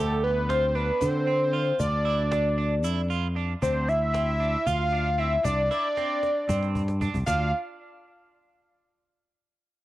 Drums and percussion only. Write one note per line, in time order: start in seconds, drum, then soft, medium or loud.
0.24 cajon slap soft
0.50 cajon slap loud
0.76 cajon slap soft
1.01 cajon bass loud
1.01 shaker medium
1.28 cajon slap soft
1.54 cajon slap soft
1.80 cajon bass loud
1.80 shaker soft
2.06 cajon slap soft
2.32 cajon slap loud
2.58 cajon slap soft
2.84 shaker medium
3.10 cajon slap soft
3.10 shaker soft
3.36 cajon slap soft
3.62 cajon bass loud
3.62 shaker medium
3.89 shaker soft
4.14 cajon slap loud
4.40 cajon slap soft
4.66 cajon bass loud
4.66 shaker medium
4.92 cajon slap soft
5.18 cajon slap soft
5.45 cajon bass loud
5.45 shaker soft
5.71 cajon slap medium
5.71 shaker soft
5.97 cajon slap medium
6.23 cajon slap medium
6.49 cajon bass loud
6.49 shaker medium
6.63 cajon slap medium
6.75 cajon bass medium
6.88 cajon slap medium
7.01 cajon bass loud
7.14 cajon bass medium
7.27 cajon bass medium
7.27 cajon slap medium
7.27 shaker medium